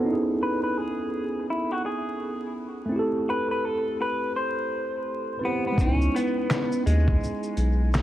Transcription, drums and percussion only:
0, 0, Header, 1, 2, 480
1, 0, Start_track
1, 0, Tempo, 714286
1, 43, Time_signature, 4, 2, 24, 8
1, 5391, End_track
2, 0, Start_track
2, 0, Title_t, "Drums"
2, 3884, Note_on_c, 9, 36, 108
2, 3889, Note_on_c, 9, 82, 69
2, 3951, Note_off_c, 9, 36, 0
2, 3956, Note_off_c, 9, 82, 0
2, 4041, Note_on_c, 9, 82, 43
2, 4108, Note_off_c, 9, 82, 0
2, 4141, Note_on_c, 9, 42, 60
2, 4141, Note_on_c, 9, 82, 50
2, 4209, Note_off_c, 9, 42, 0
2, 4209, Note_off_c, 9, 82, 0
2, 4367, Note_on_c, 9, 26, 88
2, 4373, Note_on_c, 9, 38, 117
2, 4375, Note_on_c, 9, 82, 69
2, 4434, Note_off_c, 9, 26, 0
2, 4440, Note_off_c, 9, 38, 0
2, 4442, Note_off_c, 9, 82, 0
2, 4516, Note_on_c, 9, 82, 54
2, 4583, Note_off_c, 9, 82, 0
2, 4616, Note_on_c, 9, 42, 59
2, 4616, Note_on_c, 9, 82, 44
2, 4684, Note_off_c, 9, 42, 0
2, 4684, Note_off_c, 9, 82, 0
2, 4756, Note_on_c, 9, 36, 93
2, 4823, Note_off_c, 9, 36, 0
2, 4862, Note_on_c, 9, 82, 64
2, 4929, Note_off_c, 9, 82, 0
2, 4993, Note_on_c, 9, 82, 48
2, 5060, Note_off_c, 9, 82, 0
2, 5088, Note_on_c, 9, 42, 55
2, 5088, Note_on_c, 9, 82, 42
2, 5155, Note_off_c, 9, 42, 0
2, 5155, Note_off_c, 9, 82, 0
2, 5334, Note_on_c, 9, 82, 79
2, 5336, Note_on_c, 9, 26, 91
2, 5342, Note_on_c, 9, 38, 114
2, 5391, Note_off_c, 9, 26, 0
2, 5391, Note_off_c, 9, 38, 0
2, 5391, Note_off_c, 9, 82, 0
2, 5391, End_track
0, 0, End_of_file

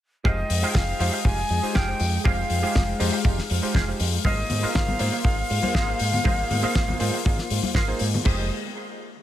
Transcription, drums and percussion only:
0, 0, Header, 1, 2, 480
1, 0, Start_track
1, 0, Key_signature, -4, "minor"
1, 0, Tempo, 500000
1, 242, Time_signature, 4, 2, 24, 8
1, 8856, End_track
2, 0, Start_track
2, 0, Title_t, "Drums"
2, 240, Note_on_c, 9, 36, 107
2, 336, Note_off_c, 9, 36, 0
2, 479, Note_on_c, 9, 46, 116
2, 575, Note_off_c, 9, 46, 0
2, 718, Note_on_c, 9, 36, 113
2, 719, Note_on_c, 9, 38, 125
2, 814, Note_off_c, 9, 36, 0
2, 815, Note_off_c, 9, 38, 0
2, 962, Note_on_c, 9, 46, 102
2, 1058, Note_off_c, 9, 46, 0
2, 1199, Note_on_c, 9, 36, 113
2, 1295, Note_off_c, 9, 36, 0
2, 1326, Note_on_c, 9, 46, 77
2, 1422, Note_off_c, 9, 46, 0
2, 1429, Note_on_c, 9, 46, 99
2, 1525, Note_off_c, 9, 46, 0
2, 1682, Note_on_c, 9, 38, 124
2, 1687, Note_on_c, 9, 36, 105
2, 1778, Note_off_c, 9, 38, 0
2, 1783, Note_off_c, 9, 36, 0
2, 1917, Note_on_c, 9, 46, 104
2, 2013, Note_off_c, 9, 46, 0
2, 2164, Note_on_c, 9, 36, 122
2, 2260, Note_off_c, 9, 36, 0
2, 2397, Note_on_c, 9, 46, 105
2, 2493, Note_off_c, 9, 46, 0
2, 2644, Note_on_c, 9, 38, 127
2, 2648, Note_on_c, 9, 36, 116
2, 2740, Note_off_c, 9, 38, 0
2, 2744, Note_off_c, 9, 36, 0
2, 2882, Note_on_c, 9, 46, 120
2, 2978, Note_off_c, 9, 46, 0
2, 3118, Note_on_c, 9, 36, 127
2, 3214, Note_off_c, 9, 36, 0
2, 3249, Note_on_c, 9, 38, 38
2, 3345, Note_off_c, 9, 38, 0
2, 3357, Note_on_c, 9, 46, 118
2, 3453, Note_off_c, 9, 46, 0
2, 3597, Note_on_c, 9, 36, 117
2, 3611, Note_on_c, 9, 38, 119
2, 3693, Note_off_c, 9, 36, 0
2, 3707, Note_off_c, 9, 38, 0
2, 3837, Note_on_c, 9, 46, 127
2, 3933, Note_off_c, 9, 46, 0
2, 4077, Note_on_c, 9, 36, 118
2, 4079, Note_on_c, 9, 63, 93
2, 4173, Note_off_c, 9, 36, 0
2, 4175, Note_off_c, 9, 63, 0
2, 4317, Note_on_c, 9, 64, 77
2, 4318, Note_on_c, 9, 46, 116
2, 4413, Note_off_c, 9, 64, 0
2, 4414, Note_off_c, 9, 46, 0
2, 4561, Note_on_c, 9, 38, 127
2, 4565, Note_on_c, 9, 36, 112
2, 4657, Note_off_c, 9, 38, 0
2, 4661, Note_off_c, 9, 36, 0
2, 4684, Note_on_c, 9, 63, 67
2, 4690, Note_on_c, 9, 64, 83
2, 4780, Note_off_c, 9, 63, 0
2, 4786, Note_off_c, 9, 64, 0
2, 4793, Note_on_c, 9, 46, 117
2, 4889, Note_off_c, 9, 46, 0
2, 5037, Note_on_c, 9, 36, 121
2, 5133, Note_off_c, 9, 36, 0
2, 5163, Note_on_c, 9, 46, 79
2, 5259, Note_off_c, 9, 46, 0
2, 5280, Note_on_c, 9, 46, 110
2, 5376, Note_off_c, 9, 46, 0
2, 5402, Note_on_c, 9, 63, 92
2, 5498, Note_off_c, 9, 63, 0
2, 5518, Note_on_c, 9, 36, 113
2, 5523, Note_on_c, 9, 38, 125
2, 5614, Note_off_c, 9, 36, 0
2, 5619, Note_off_c, 9, 38, 0
2, 5754, Note_on_c, 9, 46, 127
2, 5850, Note_off_c, 9, 46, 0
2, 5883, Note_on_c, 9, 64, 95
2, 5979, Note_off_c, 9, 64, 0
2, 6001, Note_on_c, 9, 36, 112
2, 6004, Note_on_c, 9, 63, 96
2, 6097, Note_off_c, 9, 36, 0
2, 6100, Note_off_c, 9, 63, 0
2, 6245, Note_on_c, 9, 46, 107
2, 6248, Note_on_c, 9, 64, 82
2, 6341, Note_off_c, 9, 46, 0
2, 6344, Note_off_c, 9, 64, 0
2, 6484, Note_on_c, 9, 36, 110
2, 6484, Note_on_c, 9, 38, 122
2, 6580, Note_off_c, 9, 36, 0
2, 6580, Note_off_c, 9, 38, 0
2, 6606, Note_on_c, 9, 63, 76
2, 6607, Note_on_c, 9, 64, 86
2, 6702, Note_off_c, 9, 63, 0
2, 6703, Note_off_c, 9, 64, 0
2, 6720, Note_on_c, 9, 46, 115
2, 6816, Note_off_c, 9, 46, 0
2, 6969, Note_on_c, 9, 36, 125
2, 7065, Note_off_c, 9, 36, 0
2, 7090, Note_on_c, 9, 38, 38
2, 7186, Note_off_c, 9, 38, 0
2, 7203, Note_on_c, 9, 46, 115
2, 7299, Note_off_c, 9, 46, 0
2, 7323, Note_on_c, 9, 63, 94
2, 7419, Note_off_c, 9, 63, 0
2, 7437, Note_on_c, 9, 36, 101
2, 7439, Note_on_c, 9, 38, 107
2, 7533, Note_off_c, 9, 36, 0
2, 7535, Note_off_c, 9, 38, 0
2, 7673, Note_on_c, 9, 46, 117
2, 7769, Note_off_c, 9, 46, 0
2, 7815, Note_on_c, 9, 64, 97
2, 7911, Note_off_c, 9, 64, 0
2, 7920, Note_on_c, 9, 49, 81
2, 7928, Note_on_c, 9, 36, 107
2, 8016, Note_off_c, 9, 49, 0
2, 8024, Note_off_c, 9, 36, 0
2, 8856, End_track
0, 0, End_of_file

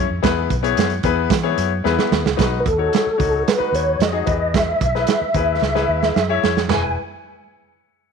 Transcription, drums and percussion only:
0, 0, Header, 1, 2, 480
1, 0, Start_track
1, 0, Key_signature, 4, "major"
1, 0, Tempo, 538600
1, 214, Time_signature, 4, 2, 24, 8
1, 7241, End_track
2, 0, Start_track
2, 0, Title_t, "Drums"
2, 212, Note_on_c, 9, 36, 103
2, 212, Note_on_c, 9, 42, 87
2, 221, Note_on_c, 9, 38, 111
2, 301, Note_off_c, 9, 36, 0
2, 301, Note_off_c, 9, 42, 0
2, 310, Note_off_c, 9, 38, 0
2, 449, Note_on_c, 9, 36, 88
2, 449, Note_on_c, 9, 42, 80
2, 538, Note_off_c, 9, 36, 0
2, 538, Note_off_c, 9, 42, 0
2, 572, Note_on_c, 9, 42, 63
2, 661, Note_off_c, 9, 42, 0
2, 688, Note_on_c, 9, 42, 104
2, 703, Note_on_c, 9, 38, 119
2, 777, Note_off_c, 9, 42, 0
2, 792, Note_off_c, 9, 38, 0
2, 800, Note_on_c, 9, 42, 56
2, 889, Note_off_c, 9, 42, 0
2, 920, Note_on_c, 9, 42, 78
2, 925, Note_on_c, 9, 36, 84
2, 1009, Note_off_c, 9, 42, 0
2, 1014, Note_off_c, 9, 36, 0
2, 1160, Note_on_c, 9, 36, 108
2, 1167, Note_on_c, 9, 42, 89
2, 1170, Note_on_c, 9, 38, 125
2, 1250, Note_off_c, 9, 36, 0
2, 1256, Note_off_c, 9, 42, 0
2, 1259, Note_off_c, 9, 38, 0
2, 1405, Note_on_c, 9, 42, 94
2, 1494, Note_off_c, 9, 42, 0
2, 1653, Note_on_c, 9, 38, 56
2, 1742, Note_off_c, 9, 38, 0
2, 1770, Note_on_c, 9, 38, 83
2, 1860, Note_off_c, 9, 38, 0
2, 1892, Note_on_c, 9, 38, 116
2, 1981, Note_off_c, 9, 38, 0
2, 2014, Note_on_c, 9, 38, 104
2, 2103, Note_off_c, 9, 38, 0
2, 2129, Note_on_c, 9, 36, 107
2, 2131, Note_on_c, 9, 42, 86
2, 2140, Note_on_c, 9, 38, 104
2, 2218, Note_off_c, 9, 36, 0
2, 2221, Note_off_c, 9, 42, 0
2, 2229, Note_off_c, 9, 38, 0
2, 2369, Note_on_c, 9, 36, 100
2, 2372, Note_on_c, 9, 42, 78
2, 2458, Note_off_c, 9, 36, 0
2, 2461, Note_off_c, 9, 42, 0
2, 2611, Note_on_c, 9, 42, 87
2, 2626, Note_on_c, 9, 38, 119
2, 2700, Note_off_c, 9, 42, 0
2, 2715, Note_off_c, 9, 38, 0
2, 2851, Note_on_c, 9, 36, 91
2, 2851, Note_on_c, 9, 42, 73
2, 2940, Note_off_c, 9, 36, 0
2, 2940, Note_off_c, 9, 42, 0
2, 3099, Note_on_c, 9, 42, 88
2, 3102, Note_on_c, 9, 38, 103
2, 3188, Note_off_c, 9, 42, 0
2, 3191, Note_off_c, 9, 38, 0
2, 3338, Note_on_c, 9, 42, 94
2, 3427, Note_off_c, 9, 42, 0
2, 3568, Note_on_c, 9, 42, 81
2, 3579, Note_on_c, 9, 38, 113
2, 3657, Note_off_c, 9, 42, 0
2, 3668, Note_off_c, 9, 38, 0
2, 3802, Note_on_c, 9, 42, 71
2, 3808, Note_on_c, 9, 36, 115
2, 3892, Note_off_c, 9, 42, 0
2, 3897, Note_off_c, 9, 36, 0
2, 4049, Note_on_c, 9, 36, 109
2, 4050, Note_on_c, 9, 42, 89
2, 4058, Note_on_c, 9, 38, 96
2, 4138, Note_off_c, 9, 36, 0
2, 4139, Note_off_c, 9, 42, 0
2, 4148, Note_off_c, 9, 38, 0
2, 4287, Note_on_c, 9, 36, 96
2, 4287, Note_on_c, 9, 42, 77
2, 4376, Note_off_c, 9, 42, 0
2, 4377, Note_off_c, 9, 36, 0
2, 4413, Note_on_c, 9, 38, 39
2, 4502, Note_off_c, 9, 38, 0
2, 4516, Note_on_c, 9, 42, 90
2, 4532, Note_on_c, 9, 38, 112
2, 4606, Note_off_c, 9, 42, 0
2, 4621, Note_off_c, 9, 38, 0
2, 4761, Note_on_c, 9, 42, 74
2, 4764, Note_on_c, 9, 36, 81
2, 4850, Note_off_c, 9, 42, 0
2, 4853, Note_off_c, 9, 36, 0
2, 5012, Note_on_c, 9, 38, 64
2, 5101, Note_off_c, 9, 38, 0
2, 5130, Note_on_c, 9, 38, 53
2, 5219, Note_off_c, 9, 38, 0
2, 5371, Note_on_c, 9, 38, 63
2, 5460, Note_off_c, 9, 38, 0
2, 5492, Note_on_c, 9, 38, 89
2, 5581, Note_off_c, 9, 38, 0
2, 5736, Note_on_c, 9, 38, 98
2, 5825, Note_off_c, 9, 38, 0
2, 5856, Note_on_c, 9, 38, 87
2, 5945, Note_off_c, 9, 38, 0
2, 5965, Note_on_c, 9, 43, 90
2, 5965, Note_on_c, 9, 52, 83
2, 5974, Note_on_c, 9, 38, 93
2, 6054, Note_off_c, 9, 43, 0
2, 6054, Note_off_c, 9, 52, 0
2, 6063, Note_off_c, 9, 38, 0
2, 7241, End_track
0, 0, End_of_file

